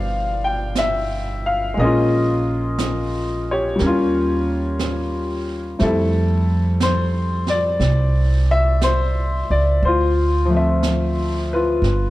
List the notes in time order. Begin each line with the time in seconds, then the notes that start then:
Already playing: G1 B2 E3 G3 D4 C5 D5 F5
0.44 G5
0.75 E5, brush sweep, snare, hi-hat pedal
1.46 F5
1.74 A#1 G#3 A#3, brush sweep
1.79 C#4 G#4 D#5
1.84 F4
2.78 brush sweep, snare, hi-hat pedal
3.51 G4 C#5
3.76 G3 A#3, brush sweep, snare
3.80 D#2 C#4
3.86 F4
4.79 brush sweep, snare, hi-hat pedal
5.79 F2 G3 A3 C4 E4 A4, brush sweep, snare
5.85 E4
6.80 C5, brush sweep, snare, hi-hat pedal
7.47 D5, snare
7.80 C2, brush sweep, snare
8.51 E5
8.81 C5, brush sweep, snare, hi-hat pedal
9.50 C#2 D5
9.82 D2 C5, brush sweep
9.87 F4
10.45 F3
10.50 A3 C4
10.57 E5
10.83 brush sweep, snare, hi-hat pedal
11.53 F4 B4
11.82 G1, brush sweep, snare